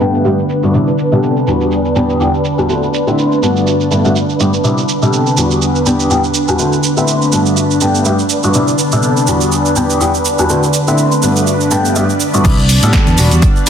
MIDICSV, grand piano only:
0, 0, Header, 1, 2, 480
1, 0, Start_track
1, 0, Key_signature, 1, "major"
1, 0, Tempo, 487805
1, 729, Time_signature, 4, 2, 24, 8
1, 13474, End_track
2, 0, Start_track
2, 0, Title_t, "Grand piano"
2, 0, Program_c, 0, 0
2, 2, Note_on_c, 0, 43, 79
2, 5, Note_on_c, 0, 57, 78
2, 7, Note_on_c, 0, 59, 79
2, 8, Note_on_c, 0, 62, 75
2, 9, Note_on_c, 0, 67, 93
2, 220, Note_off_c, 0, 43, 0
2, 222, Note_off_c, 0, 57, 0
2, 223, Note_off_c, 0, 59, 0
2, 223, Note_off_c, 0, 62, 0
2, 224, Note_off_c, 0, 67, 0
2, 241, Note_on_c, 0, 43, 86
2, 243, Note_on_c, 0, 57, 80
2, 246, Note_on_c, 0, 59, 81
2, 247, Note_on_c, 0, 62, 81
2, 250, Note_on_c, 0, 67, 103
2, 326, Note_off_c, 0, 43, 0
2, 327, Note_off_c, 0, 57, 0
2, 328, Note_off_c, 0, 59, 0
2, 328, Note_off_c, 0, 62, 0
2, 330, Note_off_c, 0, 67, 0
2, 620, Note_on_c, 0, 43, 81
2, 622, Note_on_c, 0, 57, 71
2, 624, Note_on_c, 0, 59, 75
2, 625, Note_on_c, 0, 62, 71
2, 628, Note_on_c, 0, 66, 88
2, 702, Note_off_c, 0, 43, 0
2, 703, Note_off_c, 0, 57, 0
2, 704, Note_off_c, 0, 59, 0
2, 705, Note_off_c, 0, 62, 0
2, 706, Note_off_c, 0, 66, 0
2, 726, Note_on_c, 0, 48, 77
2, 729, Note_on_c, 0, 55, 67
2, 729, Note_on_c, 0, 59, 71
2, 734, Note_on_c, 0, 62, 67
2, 734, Note_on_c, 0, 64, 87
2, 856, Note_off_c, 0, 48, 0
2, 858, Note_off_c, 0, 55, 0
2, 858, Note_off_c, 0, 59, 0
2, 860, Note_off_c, 0, 62, 0
2, 860, Note_off_c, 0, 64, 0
2, 1102, Note_on_c, 0, 48, 81
2, 1103, Note_on_c, 0, 55, 70
2, 1105, Note_on_c, 0, 59, 73
2, 1106, Note_on_c, 0, 62, 71
2, 1109, Note_on_c, 0, 69, 88
2, 1423, Note_off_c, 0, 48, 0
2, 1423, Note_off_c, 0, 55, 0
2, 1425, Note_off_c, 0, 59, 0
2, 1425, Note_off_c, 0, 62, 0
2, 1427, Note_off_c, 0, 69, 0
2, 1444, Note_on_c, 0, 40, 66
2, 1448, Note_on_c, 0, 55, 62
2, 1449, Note_on_c, 0, 59, 62
2, 1452, Note_on_c, 0, 62, 62
2, 1453, Note_on_c, 0, 66, 70
2, 1901, Note_off_c, 0, 40, 0
2, 1903, Note_off_c, 0, 55, 0
2, 1904, Note_off_c, 0, 59, 0
2, 1905, Note_off_c, 0, 62, 0
2, 1906, Note_off_c, 0, 66, 0
2, 1924, Note_on_c, 0, 40, 88
2, 1928, Note_on_c, 0, 55, 74
2, 1929, Note_on_c, 0, 59, 78
2, 1931, Note_on_c, 0, 62, 74
2, 1932, Note_on_c, 0, 67, 89
2, 2141, Note_off_c, 0, 40, 0
2, 2143, Note_off_c, 0, 55, 0
2, 2143, Note_off_c, 0, 59, 0
2, 2144, Note_off_c, 0, 62, 0
2, 2145, Note_off_c, 0, 67, 0
2, 2166, Note_on_c, 0, 40, 84
2, 2167, Note_on_c, 0, 55, 77
2, 2170, Note_on_c, 0, 59, 82
2, 2171, Note_on_c, 0, 62, 77
2, 2173, Note_on_c, 0, 67, 96
2, 2248, Note_off_c, 0, 40, 0
2, 2249, Note_off_c, 0, 55, 0
2, 2250, Note_off_c, 0, 59, 0
2, 2250, Note_off_c, 0, 62, 0
2, 2251, Note_off_c, 0, 67, 0
2, 2538, Note_on_c, 0, 40, 75
2, 2540, Note_on_c, 0, 55, 73
2, 2542, Note_on_c, 0, 59, 74
2, 2544, Note_on_c, 0, 62, 77
2, 2546, Note_on_c, 0, 66, 89
2, 2621, Note_off_c, 0, 40, 0
2, 2622, Note_off_c, 0, 55, 0
2, 2623, Note_off_c, 0, 59, 0
2, 2624, Note_off_c, 0, 62, 0
2, 2625, Note_off_c, 0, 66, 0
2, 2644, Note_on_c, 0, 50, 76
2, 2646, Note_on_c, 0, 57, 68
2, 2649, Note_on_c, 0, 60, 69
2, 2651, Note_on_c, 0, 64, 67
2, 2652, Note_on_c, 0, 66, 80
2, 2775, Note_off_c, 0, 50, 0
2, 2776, Note_off_c, 0, 57, 0
2, 2778, Note_off_c, 0, 60, 0
2, 2779, Note_off_c, 0, 64, 0
2, 2780, Note_off_c, 0, 66, 0
2, 3021, Note_on_c, 0, 50, 79
2, 3021, Note_on_c, 0, 57, 73
2, 3025, Note_on_c, 0, 60, 71
2, 3027, Note_on_c, 0, 64, 74
2, 3029, Note_on_c, 0, 71, 84
2, 3342, Note_off_c, 0, 50, 0
2, 3343, Note_off_c, 0, 57, 0
2, 3345, Note_off_c, 0, 60, 0
2, 3346, Note_off_c, 0, 64, 0
2, 3346, Note_off_c, 0, 71, 0
2, 3366, Note_on_c, 0, 43, 65
2, 3367, Note_on_c, 0, 57, 58
2, 3368, Note_on_c, 0, 59, 62
2, 3371, Note_on_c, 0, 62, 64
2, 3373, Note_on_c, 0, 66, 77
2, 3822, Note_off_c, 0, 43, 0
2, 3823, Note_off_c, 0, 57, 0
2, 3823, Note_off_c, 0, 59, 0
2, 3825, Note_off_c, 0, 62, 0
2, 3826, Note_off_c, 0, 66, 0
2, 3845, Note_on_c, 0, 43, 66
2, 3847, Note_on_c, 0, 57, 58
2, 3850, Note_on_c, 0, 59, 60
2, 3850, Note_on_c, 0, 62, 58
2, 3853, Note_on_c, 0, 64, 72
2, 3949, Note_off_c, 0, 43, 0
2, 3950, Note_off_c, 0, 57, 0
2, 3951, Note_off_c, 0, 59, 0
2, 3951, Note_off_c, 0, 62, 0
2, 3953, Note_off_c, 0, 64, 0
2, 3982, Note_on_c, 0, 43, 85
2, 3983, Note_on_c, 0, 57, 77
2, 3985, Note_on_c, 0, 59, 72
2, 3987, Note_on_c, 0, 62, 70
2, 3990, Note_on_c, 0, 66, 88
2, 4046, Note_off_c, 0, 43, 0
2, 4047, Note_off_c, 0, 57, 0
2, 4048, Note_off_c, 0, 59, 0
2, 4049, Note_off_c, 0, 62, 0
2, 4050, Note_off_c, 0, 66, 0
2, 4328, Note_on_c, 0, 43, 74
2, 4330, Note_on_c, 0, 57, 65
2, 4333, Note_on_c, 0, 59, 68
2, 4334, Note_on_c, 0, 62, 67
2, 4336, Note_on_c, 0, 67, 80
2, 4409, Note_off_c, 0, 43, 0
2, 4410, Note_off_c, 0, 57, 0
2, 4411, Note_off_c, 0, 59, 0
2, 4412, Note_off_c, 0, 62, 0
2, 4413, Note_off_c, 0, 67, 0
2, 4564, Note_on_c, 0, 48, 76
2, 4567, Note_on_c, 0, 55, 66
2, 4569, Note_on_c, 0, 59, 68
2, 4573, Note_on_c, 0, 62, 70
2, 4573, Note_on_c, 0, 64, 83
2, 4695, Note_off_c, 0, 48, 0
2, 4697, Note_off_c, 0, 55, 0
2, 4698, Note_off_c, 0, 59, 0
2, 4700, Note_off_c, 0, 62, 0
2, 4700, Note_off_c, 0, 64, 0
2, 4940, Note_on_c, 0, 48, 80
2, 4942, Note_on_c, 0, 55, 75
2, 4944, Note_on_c, 0, 59, 69
2, 4944, Note_on_c, 0, 62, 68
2, 4947, Note_on_c, 0, 69, 90
2, 5262, Note_off_c, 0, 48, 0
2, 5263, Note_off_c, 0, 55, 0
2, 5264, Note_off_c, 0, 59, 0
2, 5264, Note_off_c, 0, 62, 0
2, 5266, Note_off_c, 0, 69, 0
2, 5287, Note_on_c, 0, 40, 66
2, 5290, Note_on_c, 0, 55, 63
2, 5291, Note_on_c, 0, 59, 61
2, 5293, Note_on_c, 0, 62, 60
2, 5296, Note_on_c, 0, 66, 74
2, 5742, Note_off_c, 0, 40, 0
2, 5744, Note_off_c, 0, 55, 0
2, 5745, Note_off_c, 0, 59, 0
2, 5745, Note_off_c, 0, 62, 0
2, 5747, Note_off_c, 0, 66, 0
2, 5766, Note_on_c, 0, 40, 84
2, 5768, Note_on_c, 0, 55, 77
2, 5770, Note_on_c, 0, 59, 78
2, 5772, Note_on_c, 0, 62, 79
2, 5775, Note_on_c, 0, 67, 94
2, 5982, Note_off_c, 0, 40, 0
2, 5983, Note_off_c, 0, 55, 0
2, 5984, Note_off_c, 0, 59, 0
2, 5985, Note_off_c, 0, 62, 0
2, 5986, Note_off_c, 0, 67, 0
2, 6006, Note_on_c, 0, 40, 90
2, 6007, Note_on_c, 0, 55, 83
2, 6009, Note_on_c, 0, 59, 84
2, 6011, Note_on_c, 0, 62, 85
2, 6012, Note_on_c, 0, 67, 99
2, 6088, Note_off_c, 0, 40, 0
2, 6088, Note_off_c, 0, 55, 0
2, 6090, Note_off_c, 0, 59, 0
2, 6090, Note_off_c, 0, 62, 0
2, 6091, Note_off_c, 0, 67, 0
2, 6377, Note_on_c, 0, 40, 81
2, 6379, Note_on_c, 0, 55, 75
2, 6381, Note_on_c, 0, 59, 71
2, 6384, Note_on_c, 0, 62, 73
2, 6384, Note_on_c, 0, 66, 89
2, 6461, Note_off_c, 0, 40, 0
2, 6462, Note_off_c, 0, 55, 0
2, 6463, Note_off_c, 0, 59, 0
2, 6464, Note_off_c, 0, 62, 0
2, 6464, Note_off_c, 0, 66, 0
2, 6483, Note_on_c, 0, 50, 76
2, 6484, Note_on_c, 0, 57, 72
2, 6486, Note_on_c, 0, 60, 70
2, 6488, Note_on_c, 0, 64, 71
2, 6491, Note_on_c, 0, 66, 83
2, 6615, Note_off_c, 0, 50, 0
2, 6615, Note_off_c, 0, 57, 0
2, 6616, Note_off_c, 0, 60, 0
2, 6617, Note_off_c, 0, 64, 0
2, 6619, Note_off_c, 0, 66, 0
2, 6858, Note_on_c, 0, 50, 79
2, 6859, Note_on_c, 0, 57, 73
2, 6861, Note_on_c, 0, 60, 76
2, 6862, Note_on_c, 0, 64, 73
2, 6866, Note_on_c, 0, 71, 84
2, 7181, Note_off_c, 0, 50, 0
2, 7182, Note_off_c, 0, 57, 0
2, 7183, Note_off_c, 0, 60, 0
2, 7183, Note_off_c, 0, 64, 0
2, 7185, Note_off_c, 0, 71, 0
2, 7207, Note_on_c, 0, 43, 67
2, 7207, Note_on_c, 0, 57, 63
2, 7208, Note_on_c, 0, 59, 63
2, 7212, Note_on_c, 0, 62, 64
2, 7212, Note_on_c, 0, 66, 72
2, 7663, Note_off_c, 0, 43, 0
2, 7663, Note_off_c, 0, 57, 0
2, 7663, Note_off_c, 0, 59, 0
2, 7665, Note_off_c, 0, 62, 0
2, 7665, Note_off_c, 0, 66, 0
2, 7685, Note_on_c, 0, 43, 80
2, 7688, Note_on_c, 0, 57, 77
2, 7691, Note_on_c, 0, 59, 73
2, 7693, Note_on_c, 0, 62, 79
2, 7695, Note_on_c, 0, 67, 92
2, 7902, Note_off_c, 0, 43, 0
2, 7903, Note_off_c, 0, 57, 0
2, 7905, Note_off_c, 0, 59, 0
2, 7906, Note_off_c, 0, 62, 0
2, 7906, Note_off_c, 0, 67, 0
2, 7928, Note_on_c, 0, 43, 87
2, 7928, Note_on_c, 0, 57, 86
2, 7930, Note_on_c, 0, 59, 84
2, 7933, Note_on_c, 0, 62, 84
2, 7935, Note_on_c, 0, 67, 98
2, 8009, Note_off_c, 0, 43, 0
2, 8009, Note_off_c, 0, 57, 0
2, 8010, Note_off_c, 0, 59, 0
2, 8011, Note_off_c, 0, 62, 0
2, 8012, Note_off_c, 0, 67, 0
2, 8301, Note_on_c, 0, 43, 81
2, 8303, Note_on_c, 0, 57, 75
2, 8305, Note_on_c, 0, 59, 74
2, 8307, Note_on_c, 0, 62, 72
2, 8308, Note_on_c, 0, 66, 93
2, 8383, Note_off_c, 0, 43, 0
2, 8383, Note_off_c, 0, 57, 0
2, 8385, Note_off_c, 0, 59, 0
2, 8386, Note_off_c, 0, 62, 0
2, 8386, Note_off_c, 0, 66, 0
2, 8407, Note_on_c, 0, 48, 78
2, 8411, Note_on_c, 0, 55, 72
2, 8412, Note_on_c, 0, 59, 74
2, 8414, Note_on_c, 0, 62, 75
2, 8416, Note_on_c, 0, 64, 85
2, 8537, Note_off_c, 0, 48, 0
2, 8539, Note_off_c, 0, 55, 0
2, 8539, Note_off_c, 0, 59, 0
2, 8540, Note_off_c, 0, 62, 0
2, 8541, Note_off_c, 0, 64, 0
2, 8782, Note_on_c, 0, 48, 84
2, 8782, Note_on_c, 0, 55, 74
2, 8786, Note_on_c, 0, 59, 74
2, 8787, Note_on_c, 0, 62, 74
2, 8790, Note_on_c, 0, 69, 92
2, 9103, Note_off_c, 0, 48, 0
2, 9103, Note_off_c, 0, 55, 0
2, 9105, Note_off_c, 0, 59, 0
2, 9106, Note_off_c, 0, 62, 0
2, 9107, Note_off_c, 0, 69, 0
2, 9125, Note_on_c, 0, 40, 69
2, 9128, Note_on_c, 0, 55, 64
2, 9131, Note_on_c, 0, 59, 64
2, 9132, Note_on_c, 0, 62, 64
2, 9134, Note_on_c, 0, 66, 78
2, 9582, Note_off_c, 0, 40, 0
2, 9583, Note_off_c, 0, 55, 0
2, 9584, Note_off_c, 0, 59, 0
2, 9585, Note_off_c, 0, 62, 0
2, 9586, Note_off_c, 0, 66, 0
2, 9602, Note_on_c, 0, 40, 85
2, 9604, Note_on_c, 0, 55, 76
2, 9606, Note_on_c, 0, 59, 74
2, 9609, Note_on_c, 0, 62, 81
2, 9610, Note_on_c, 0, 67, 96
2, 9820, Note_off_c, 0, 40, 0
2, 9821, Note_off_c, 0, 55, 0
2, 9822, Note_off_c, 0, 59, 0
2, 9823, Note_off_c, 0, 62, 0
2, 9824, Note_off_c, 0, 67, 0
2, 9845, Note_on_c, 0, 40, 93
2, 9845, Note_on_c, 0, 55, 83
2, 9847, Note_on_c, 0, 59, 87
2, 9850, Note_on_c, 0, 62, 86
2, 9851, Note_on_c, 0, 67, 99
2, 9927, Note_off_c, 0, 40, 0
2, 9928, Note_off_c, 0, 55, 0
2, 9928, Note_off_c, 0, 59, 0
2, 9930, Note_off_c, 0, 62, 0
2, 9931, Note_off_c, 0, 67, 0
2, 10221, Note_on_c, 0, 40, 80
2, 10221, Note_on_c, 0, 55, 72
2, 10223, Note_on_c, 0, 59, 74
2, 10225, Note_on_c, 0, 62, 78
2, 10229, Note_on_c, 0, 66, 90
2, 10302, Note_off_c, 0, 40, 0
2, 10303, Note_off_c, 0, 55, 0
2, 10304, Note_off_c, 0, 59, 0
2, 10305, Note_off_c, 0, 62, 0
2, 10307, Note_off_c, 0, 66, 0
2, 10326, Note_on_c, 0, 50, 80
2, 10327, Note_on_c, 0, 57, 69
2, 10329, Note_on_c, 0, 60, 69
2, 10331, Note_on_c, 0, 64, 72
2, 10334, Note_on_c, 0, 66, 86
2, 10456, Note_off_c, 0, 50, 0
2, 10457, Note_off_c, 0, 57, 0
2, 10458, Note_off_c, 0, 60, 0
2, 10459, Note_off_c, 0, 64, 0
2, 10460, Note_off_c, 0, 66, 0
2, 10702, Note_on_c, 0, 50, 77
2, 10703, Note_on_c, 0, 57, 73
2, 10705, Note_on_c, 0, 60, 75
2, 10708, Note_on_c, 0, 64, 76
2, 10708, Note_on_c, 0, 71, 86
2, 11023, Note_off_c, 0, 50, 0
2, 11023, Note_off_c, 0, 57, 0
2, 11025, Note_off_c, 0, 60, 0
2, 11026, Note_off_c, 0, 64, 0
2, 11026, Note_off_c, 0, 71, 0
2, 11045, Note_on_c, 0, 43, 67
2, 11047, Note_on_c, 0, 59, 62
2, 11048, Note_on_c, 0, 57, 66
2, 11050, Note_on_c, 0, 62, 63
2, 11053, Note_on_c, 0, 66, 73
2, 11501, Note_off_c, 0, 43, 0
2, 11503, Note_off_c, 0, 57, 0
2, 11503, Note_off_c, 0, 59, 0
2, 11504, Note_off_c, 0, 62, 0
2, 11506, Note_off_c, 0, 66, 0
2, 11523, Note_on_c, 0, 43, 89
2, 11527, Note_on_c, 0, 57, 80
2, 11528, Note_on_c, 0, 59, 82
2, 11529, Note_on_c, 0, 62, 82
2, 11532, Note_on_c, 0, 67, 95
2, 11741, Note_off_c, 0, 43, 0
2, 11742, Note_off_c, 0, 57, 0
2, 11743, Note_off_c, 0, 59, 0
2, 11744, Note_off_c, 0, 62, 0
2, 11745, Note_off_c, 0, 67, 0
2, 11768, Note_on_c, 0, 43, 93
2, 11769, Note_on_c, 0, 57, 80
2, 11770, Note_on_c, 0, 59, 83
2, 11772, Note_on_c, 0, 62, 83
2, 11774, Note_on_c, 0, 67, 98
2, 11849, Note_off_c, 0, 43, 0
2, 11849, Note_off_c, 0, 57, 0
2, 11850, Note_off_c, 0, 59, 0
2, 11851, Note_off_c, 0, 62, 0
2, 11852, Note_off_c, 0, 67, 0
2, 12139, Note_on_c, 0, 43, 82
2, 12143, Note_on_c, 0, 59, 76
2, 12144, Note_on_c, 0, 57, 76
2, 12146, Note_on_c, 0, 62, 73
2, 12148, Note_on_c, 0, 66, 92
2, 12222, Note_off_c, 0, 43, 0
2, 12224, Note_off_c, 0, 57, 0
2, 12224, Note_off_c, 0, 59, 0
2, 12225, Note_off_c, 0, 62, 0
2, 12226, Note_off_c, 0, 66, 0
2, 12247, Note_on_c, 0, 55, 82
2, 12247, Note_on_c, 0, 59, 73
2, 12252, Note_on_c, 0, 62, 79
2, 12254, Note_on_c, 0, 64, 93
2, 12377, Note_off_c, 0, 55, 0
2, 12377, Note_off_c, 0, 59, 0
2, 12380, Note_off_c, 0, 62, 0
2, 12380, Note_off_c, 0, 64, 0
2, 12624, Note_on_c, 0, 55, 87
2, 12626, Note_on_c, 0, 59, 84
2, 12628, Note_on_c, 0, 62, 82
2, 12632, Note_on_c, 0, 69, 102
2, 12944, Note_off_c, 0, 55, 0
2, 12945, Note_off_c, 0, 59, 0
2, 12946, Note_off_c, 0, 62, 0
2, 12948, Note_off_c, 0, 69, 0
2, 12969, Note_on_c, 0, 55, 75
2, 12973, Note_on_c, 0, 59, 68
2, 12975, Note_on_c, 0, 62, 70
2, 12977, Note_on_c, 0, 66, 86
2, 13424, Note_off_c, 0, 55, 0
2, 13426, Note_off_c, 0, 59, 0
2, 13427, Note_off_c, 0, 62, 0
2, 13428, Note_off_c, 0, 66, 0
2, 13474, End_track
0, 0, End_of_file